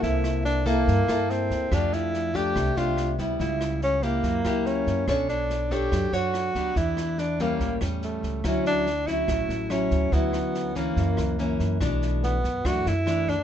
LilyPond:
<<
  \new Staff \with { instrumentName = "Tenor saxophone" } { \time 4/4 \key d \major \tempo 4 = 143 e'4 d'8 bes4. c'4 | d'8 e'4 g'4 f'4 r8 | e'4 cis'8 bes4. cis'4 | cis'8 d'4 g'4 fis'4. |
e'4 d'8 bes4 r8 a4 | cis'8 d'4 e'4. cis'4 | b4. bes2 r8 | \key b \minor r4 b4 fis'8 e'4 d'8 | }
  \new Staff \with { instrumentName = "Nylon-string guitar" } { \time 4/4 \key d \major << { <bes e' a'>4. <bes e' a'>4 <bes e' a'>4. | <a d' g'>4. <a d' g'>4 <a d' g'>4 <g b e'>8~ | <g b e'>4. <bes e' g'>4 <ais e' g'>4. | <d' a' cis''>4. <d' a' cis''>4 <d' a' cis''>4 <b d' g'>8~ |
<b d' g'>4. <g bes cis'>4 <g cis'>4. | <fis cis' e'>4 r8 <fis cis' e'>4. <fis cis' e'>4 | <fis cis' e'>4. <e bes cis'>4. <e ais cis'>4 | \key b \minor <e a d'>4. r8 <e a d'>8 r8 <e a d'>8 r8 | } \\ { c2 g,2 | f2 c2 | cis2 fis2 | b2 fis2 |
e2 a,2 | d2 a,2 | d2 fis,2 | b,2 fis,2 | } >> }
  \new Staff \with { instrumentName = "Upright bass" } { \clef bass \time 4/4 \key d \major c,2 g,8 g,4 d,8 | f,2 c,8 c,4 d,8 | cis,2 fis,8 cis,4 fis,8 | b,,2 fis,8 fis,4 d,8 |
e,2 a,,8 e,4 cis,8 | d,2 a,,8 a,,4 d,8 | d,2 fis,8 cis,4 fis,8 | \key b \minor b,,4. fis,8 fis,8 fis,4. | }
  \new DrumStaff \with { instrumentName = "Drums" } \drummode { \time 4/4 <bd sn>8 <ss sn>8 sn8 <bd sn>8 <bd sn>8 <ss sn>8 sn8 <bd sn>8 | <bd ss sn>8 sn8 sn8 <bd sn>8 <bd ss sn>8 sn8 <ss sn>8 <bd sn>8 | <bd sn>8 <ss sn>8 sn8 <bd sn>8 <bd sn>8 <ss sn>8 sn8 <bd sn>8 | <bd ss sn>8 sn8 sn8 <bd sn>8 <bd ss sn>8 sn8 <ss sn>8 <bd sn>8 |
<bd sn>8 <ss sn>8 sn8 <bd sn>8 <bd sn>8 <ss sn>8 sn8 <bd sn>8 | <bd ss sn>8 sn8 sn8 <bd sn>8 <bd ss sn>8 sn8 <ss sn>8 <bd sn>8 | <bd sn>8 <ss sn>8 sn8 <bd sn>8 <bd sn>8 <ss sn>8 sn8 <bd sn>8 | <bd ss sn>8 sn8 sn8 <bd sn>8 <bd ss sn>8 sn8 <ss sn>8 <bd sn>8 | }
>>